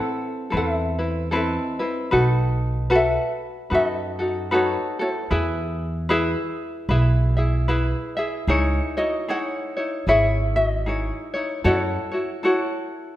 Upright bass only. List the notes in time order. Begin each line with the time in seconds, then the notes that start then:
0.54 E2
2.13 B1
3.71 F#2
5.31 E2
6.89 B1
8.47 C#2
10.07 G#1
11.65 F#2